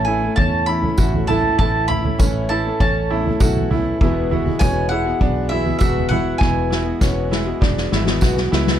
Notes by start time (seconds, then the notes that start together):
Already playing: A1 A2 C#4 E4
0.05 E3 A3 E4 A4 G#5
0.09 C#4 E4
0.22 A3 C#4 E4
0.36 E2 C#4 A5, kick, floor tom
0.66 E2 E3 A3 C#4 E4 B5
0.71 E4
0.81 A3 C#4 E4, floor tom
0.97 A1 A2 E3 A3 C#4 E4 F#4, kick, tambourine
1.13 A3 C#4 E4, floor tom
1.27 E3 A3 C#4 E4 A4 A5, floor tom, mid tom
1.32 E4
1.58 A1 A2 E3 A3 C#4 E4 A5, kick, floor tom
1.87 E3 A3 C#4 E4 B5, floor tom
2.02 A3 C#4 E4, floor tom
2.18 A1 A2 E3 A3 C#4 E4, kick, mid tom, tambourine
2.48 E3 A3 C#4 E4 A4 A5
2.65 A3 C#4 E4
2.80 A1 C#4 A5, kick, floor tom
3.10 E2 E3 A3 C#4 E4
3.25 A3 C#4 E4, floor tom
3.40 B1 A2 E3 A3 C#4 E4 F#4, kick, tambourine
3.55 floor tom
3.70 E3 A3 C#4 E4 A4, floor tom, mid tom
4.00 E1 E2 B2 E3 G#3 B3 E4 F#4 G#4, kick, floor tom
4.30 E3 G#3 B3 E4 F#4, floor tom
4.46 E3 G#3 B3 F#4, floor tom
4.59 E1 E2 B2 E3 G#3 B3 C#4 F#4 G#5, kick, mid tom, tambourine
4.89 E3 G#3 B3 E4 G#4 F#5
4.93 F#4
5.05 G#3 B3 F#4
5.09 E3
5.21 B1 B3 D4, kick, floor tom
5.49 E2 E3 G#3 B3 E4 F#4 E5
5.65 E3 G#3 B3 F#4, floor tom
5.79 E1 E2 B2 E3 G#3 B3 F#4 E5, kick, tambourine
5.96 floor tom
6.09 E3 G#3 B3 E4 G#4 F#5, floor tom, mid tom
6.13 F#4
6.38 E1 E2 B2 E3 G#3 B3 E4 F#4 G#5, kick, snare
6.69 E3 G#3 B3 E4 F#4, snare
6.84 E3 G#3 B3 F#4
7.00 E1 E2 B2 E3 G#3 B3 C#4 F#4, kick, snare, tambourine
7.29 E3 G#3 B3 E4 F#4 G#4, snare
7.45 E3 G#3 B3 F#4
7.61 E1 B3 D4, kick, snare
7.77 snare
7.90 G#1 E2 E3 G#3 B3 E4 F#4, snare
8.05 E3 G#3 B3 F#4, snare
8.21 B1 E2 B2 E3 G#3 B3 F#4, kick, snare, tambourine
8.35 E3 G#3 B3 F#4, snare
8.50 C#2 E3 G#3 B3 E4 F#4 G#4, snare
8.67 snare